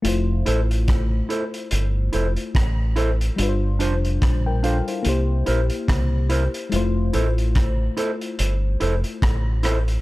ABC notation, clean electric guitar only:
X:1
M:4/4
L:1/8
Q:"Swing 16ths" 1/4=72
K:F
V:1 name="Clean electric guitar"
z [EAc] z [EAc] z [EAc] z [EAc] | z [DFc] z [DFc] z [EBc] z [EBc] | z [EAc] z [EAc] z [EAc] z [EAc] |]